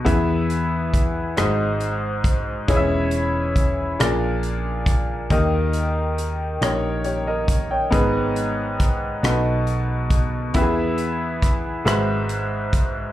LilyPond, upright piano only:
<<
  \new Staff \with { instrumentName = "Upright piano" } { \time 6/8 \key dis \phrygian \tempo 4. = 46 << { r2. | r2. | r2 <g' cis''>16 <ais' dis''>8 <cis'' g''>16~ | <cis'' g''>16 r2 r8. |
r2. | } \\ { <b e' gis' b' e''>4 r8 <dis' fis' gis' bis' dis''>4 r8 | <cis' e' gis' cis'' dis'' e''>4 r8 <d' eis' gis' ais' d''>4 r8 | <ais dis' g' ais' dis''>4 r8 <ais dis' g' ais' cis''>4 r8 | <b dis' gis' b' dis''>4 r8 <dis' fis' a' b' dis''>4 r8 |
<b e' g' gis' b' e''>4 r8 <fis' gis' b' bis' e''>4 r8 | } >> }
  \new Staff \with { instrumentName = "Upright piano" } { \clef bass \time 6/8 \key dis \phrygian e4. gis,4. | e4. ais,4. | dis4. r4. | gis,4. b,4. |
e4. gis,4. | }
>>